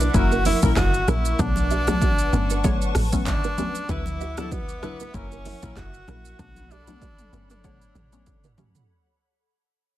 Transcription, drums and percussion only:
0.00 shaker
0.14 kick, shaker
0.32 shaker
0.45 open hi-hat, high conga, shaker
0.63 kick, shaker
0.77 kick, cross-stick, clap, low conga, shaker
0.94 shaker
1.08 cross-stick, high conga, shaker
1.25 shaker
1.39 kick, low conga, shaker
1.56 high conga, shaker
1.71 shaker
1.87 cross-stick, high conga, shaker
2.02 kick, shaker
2.19 shaker
2.33 low conga, shaker
2.50 shaker
2.64 kick, shaker
2.82 shaker
2.95 cross-stick, open hi-hat, high conga, shaker
3.13 kick, shaker
3.27 kick, clap, low conga, shaker
3.44 shaker
3.58 high conga, shaker
3.75 shaker
3.89 kick, low conga, shaker
4.06 high conga, shaker
4.21 shaker
4.37 cross-stick, high conga, shaker
4.52 kick, shaker
4.69 shaker
4.83 cross-stick, low conga, shaker
5.00 shaker
5.14 kick, shaker
5.32 shaker
5.45 open hi-hat, high conga, shaker
5.63 kick, shaker
5.77 kick, cross-stick, clap, low conga, shaker
5.94 shaker
6.08 cross-stick, high conga, shaker
6.25 shaker
6.39 kick, high tom, low conga, shaker
6.56 high tom, high conga, shaker
6.71 shaker
6.87 high tom, high conga, shaker
7.02 kick, mid tom, shaker
7.19 mid tom, shaker
7.33 low conga, shaker
7.50 mid tom, shaker
7.64 kick, mid tom, shaker
7.82 shaker
7.95 mid tom, high conga, shaker
8.13 shaker
8.27 kick, low conga, shaker
8.44 floor tom, shaker
8.58 floor tom, high conga, shaker
8.75 floor tom, shaker

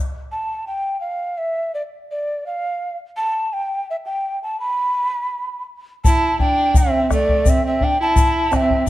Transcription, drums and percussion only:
6.04 bombo low, shaker
6.39 bombo low
6.74 bombo low, shaker
7.11 bombo rim, bombo low, shaker
7.29 bombo low
7.46 bombo low, shaker
7.81 bombo low
8.16 bombo low, shaker
8.52 bombo rim, bombo low, shaker
8.70 bombo low

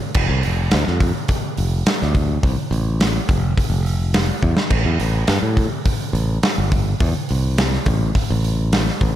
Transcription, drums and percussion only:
0.14 kick, crash
0.43 open hi-hat
0.71 snare, open hi-hat
0.87 snare
1.00 kick, open hi-hat
1.28 kick, open hi-hat
1.57 open hi-hat
1.86 snare, open hi-hat
2.02 snare
2.15 kick, open hi-hat
2.43 kick, open hi-hat
2.73 open hi-hat
3.00 snare, open hi-hat
3.29 kick, open hi-hat
3.58 kick, open hi-hat
3.86 open hi-hat
4.14 snare, open hi-hat
4.43 kick
4.57 snare
4.70 kick, crash
5.00 open hi-hat
5.27 snare, open hi-hat
5.57 kick, open hi-hat
5.85 kick, open hi-hat
6.15 open hi-hat
6.43 snare, open hi-hat
6.72 kick, open hi-hat
7.00 kick, open hi-hat
7.29 open hi-hat
7.58 snare, open hi-hat
7.73 snare
7.86 kick, open hi-hat
8.15 kick, open hi-hat
8.44 open hi-hat
8.73 snare, open hi-hat
8.88 snare
9.01 kick, open hi-hat

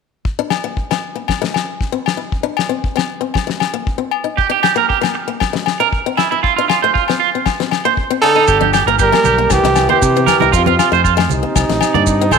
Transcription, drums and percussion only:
0.25 kick
0.50 snare, low agogo
0.77 kick
0.91 snare, low agogo
1.28 kick, snare, low agogo
1.44 snare
1.54 snare, low agogo
1.81 kick, snare
2.06 snare, low agogo
2.32 kick
2.57 snare, low agogo
2.84 kick
2.97 snare, low agogo
3.34 kick, snare, low agogo
3.50 snare
3.60 snare, low agogo
3.87 kick
4.11 low agogo
4.38 kick
4.63 snare, low agogo
4.90 kick
5.03 snare, low agogo
5.40 kick, snare, low agogo
5.55 snare
5.66 snare, low agogo
5.93 kick
6.17 snare, low agogo
6.44 kick
6.70 snare, low agogo
6.95 kick
7.08 snare, low agogo
7.46 kick, snare, low agogo
7.60 snare
7.71 snare, low agogo
7.97 kick
8.22 low agogo
8.47 kick, maracas
8.61 high conga
8.74 snare, low agogo, maracas
8.87 maracas
8.99 kick, maracas
9.13 snare, low agogo
9.24 low conga, maracas
9.50 kick, snare, low agogo, maracas
9.64 snare, maracas
9.76 snare, low agogo, maracas
9.89 low conga
10.02 kick, maracas
10.16 maracas
10.27 snare, low conga, low agogo, maracas
10.40 high conga, maracas
10.53 kick, maracas
10.66 high conga
10.79 snare, low agogo, maracas
10.94 maracas
11.05 kick, maracas
11.18 snare, low agogo
11.29 low conga, maracas
11.56 kick, snare, low agogo, maracas
11.70 snare, maracas
11.81 snare, low agogo, maracas
11.94 low conga
12.07 kick, maracas
12.21 maracas
12.31 low conga, low agogo, maracas

